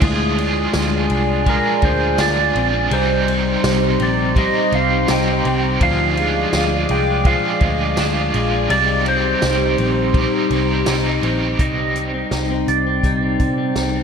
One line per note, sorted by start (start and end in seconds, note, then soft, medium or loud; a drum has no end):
0.00 0.66 D2 medium
0.00 0.38 D3 medium
0.00 0.38 F3 medium
0.00 0.74 G#3 medium
0.00 0.10 C#4 medium
0.00 0.39 D4 medium
0.00 2.89 F4 medium
0.00 2.19 F4 medium
0.00 0.39 F4 medium
0.00 2.88 G#4 medium
0.00 2.89 D5 medium
0.00 2.89 G#5 medium
0.00 kick loud
0.00 crash medium
0.05 0.35 G#4 medium
0.05 1.44 G#4 loud
0.37 1.10 D4 medium
0.37 1.47 F4 soft
0.37 1.46 G#4 medium
0.37 ride soft
0.42 1.46 D4 soft
0.73 1.06 D2 loud
0.73 1.46 G#3 medium
0.73 snare loud
0.73 ride soft
0.73 tambourine medium
1.10 1.58 C2 medium
1.10 1.82 D4 medium
1.10 ride soft
1.44 2.17 F3 medium
1.44 2.91 G#3 medium
1.44 2.19 D4 medium
1.44 kick medium
1.44 ride soft
1.49 2.20 F4 medium
1.49 2.21 G#4 medium
1.49 1.82 A#4 medium
1.82 2.15 D2 medium
1.82 2.56 D4 medium
1.82 2.20 C5 medium
1.82 kick medium
1.82 ride soft
2.18 2.51 D2 loud
2.18 2.91 F3 medium
2.18 2.92 D4 medium
2.18 2.92 F4 medium
2.18 2.93 F4 medium
2.18 2.94 D5 medium
2.18 snare loud
2.18 ride medium
2.18 tambourine medium
2.23 2.93 G#4 medium
2.55 2.87 A#1 medium
2.55 2.73 C4 medium
2.55 ride soft
2.73 2.99 D4 medium
2.90 3.55 C2 medium
2.90 4.35 C3 medium
2.90 3.63 G3 medium
2.90 4.34 G3 medium
2.90 5.78 D#4 medium
2.90 5.09 D#4 medium
2.90 5.78 G4 medium
2.90 5.78 C5 medium
2.90 3.97 C5 loud
2.90 5.78 C6 medium
2.90 ride medium
2.94 4.36 C4 medium
2.94 4.37 D#4 medium
2.94 4.39 G4 medium
3.28 3.99 C4 medium
3.28 ride soft
3.64 3.96 C2 loud
3.64 4.36 G3 medium
3.64 snare loud
3.64 ride soft
3.64 tambourine medium
4.00 4.48 A#1 medium
4.00 4.72 C4 medium
4.00 4.38 D5 medium
4.00 ride soft
4.35 5.06 G3 medium
4.35 5.81 G3 medium
4.35 5.08 C4 medium
4.35 5.10 D#4 medium
4.35 4.74 D#5 loud
4.35 kick medium
4.35 ride medium
4.40 5.10 G4 medium
4.72 5.04 C2 medium
4.72 5.45 C4 medium
4.72 5.10 F5 loud
4.72 ride soft
5.07 5.40 C2 medium
5.07 5.80 G3 medium
5.07 5.81 C4 medium
5.07 5.82 D#4 medium
5.07 5.60 G5 loud
5.07 snare loud
5.07 ride medium
5.07 tambourine medium
5.11 5.82 D#4 medium
5.11 5.83 G4 medium
5.45 5.77 C2 medium
5.45 5.88 C4 medium
5.45 ride soft
5.80 6.44 D2 loud
5.80 6.17 D3 medium
5.80 6.17 F3 medium
5.80 6.53 F3 medium
5.80 6.18 D4 medium
5.80 7.97 D4 medium
5.80 6.18 F4 medium
5.80 8.67 G#4 medium
5.80 6.14 G#4 medium
5.80 8.67 D5 medium
5.80 8.67 F5 medium
5.80 6.91 F5 loud
5.80 8.67 D6 loud
5.80 kick loud
5.80 ride medium
6.15 6.89 G#3 medium
6.15 7.26 F4 soft
6.15 7.25 G#4 medium
6.15 ride soft
6.21 7.25 D4 soft
6.53 6.85 D2 loud
6.53 7.25 F3 medium
6.53 snare loud
6.53 ride soft
6.53 tambourine medium
6.89 7.37 C2 medium
6.89 7.60 G#3 medium
6.89 7.26 G5 medium
6.89 ride soft
7.24 7.95 F3 medium
7.24 8.70 F3 medium
7.24 7.97 D4 medium
7.24 8.30 F5 loud
7.24 kick medium
7.24 ride soft
7.28 7.99 F4 medium
7.28 8.00 G#4 medium
7.61 7.93 D2 loud
7.61 8.33 G#3 medium
7.61 kick medium
7.61 ride soft
7.96 8.30 D2 medium
7.96 8.69 F3 medium
7.96 8.70 D4 medium
7.96 snare loud
7.96 ride medium
7.96 tambourine medium
8.01 8.71 F4 medium
8.01 8.72 G#4 medium
8.34 8.66 A#1 medium
8.34 8.77 G#3 medium
8.34 ride soft
8.69 9.33 C2 loud
8.69 9.05 C3 medium
8.69 9.06 G3 medium
8.69 9.42 G3 medium
8.69 9.06 C4 medium
8.69 11.56 D#4 medium
8.69 10.87 D#4 medium
8.69 9.07 D#4 medium
8.69 11.57 G4 medium
8.69 11.57 C5 medium
8.69 9.07 D5 loud
8.69 11.57 C6 medium
8.69 ride medium
8.73 9.03 G4 medium
9.04 9.78 C4 medium
9.04 10.16 D#4 soft
9.04 10.18 G4 medium
9.04 ride soft
9.08 10.15 C4 soft
9.08 11.20 C5 loud
9.42 9.74 C2 loud
9.42 10.15 G3 medium
9.42 snare loud
9.42 ride soft
9.42 tambourine medium
9.78 10.26 A#1 medium
9.78 10.51 C4 medium
9.78 ride soft
10.13 10.84 G3 medium
10.13 11.60 G3 medium
10.13 10.86 C4 medium
10.13 10.88 D#4 medium
10.13 kick medium
10.13 ride soft
10.19 10.90 G4 medium
10.51 10.82 C2 loud
10.51 11.23 C4 medium
10.51 ride soft
10.85 11.18 C2 loud
10.85 12.11 G3 medium
10.85 12.11 C4 medium
10.85 11.60 D#4 medium
10.85 12.11 D#4 medium
10.85 snare loud
10.85 ride medium
10.85 tambourine medium
10.90 12.11 G4 medium
11.23 11.55 A#1 medium
11.23 11.77 C4 medium
11.23 ride soft
11.59 12.23 C2 medium
11.59 11.95 G3 medium
11.59 14.03 C4 medium
11.59 14.03 D#4 medium
11.59 12.32 D#4 medium
11.59 14.03 C5 medium
11.59 12.28 D#5 medium
11.59 14.03 G5 medium
11.59 kick loud
11.59 closed hi-hat medium
11.78 12.13 C4 soft
11.96 12.68 G3 soft
11.96 closed hi-hat soft
12.14 12.50 C4 soft
12.31 12.63 C2 medium
12.31 13.05 D#4 medium
12.31 snare medium
12.31 closed hi-hat medium
12.50 12.86 C4 soft
12.68 12.99 C2 medium
12.68 13.04 G3 medium
12.68 13.72 D5 medium
12.68 closed hi-hat soft
12.87 13.22 C4 medium
13.03 13.35 C2 medium
13.03 13.40 G3 medium
13.03 13.76 D#4 medium
13.03 kick medium
13.03 closed hi-hat soft
13.23 13.57 C4 soft
13.40 13.72 C3 medium
13.40 14.03 G3 soft
13.40 kick medium
13.40 closed hi-hat soft
13.58 13.95 C4 medium
13.76 14.03 C2 medium
13.76 14.03 D#4 medium
13.76 snare medium
13.76 closed hi-hat medium
13.95 14.03 C4 soft